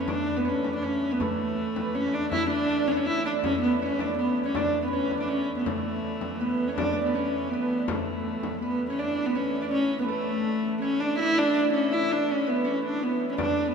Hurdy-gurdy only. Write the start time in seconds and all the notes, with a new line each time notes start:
0.09 A2 E3
4.55 A2 E3
8.99 A2 E3
13.39 A2 E3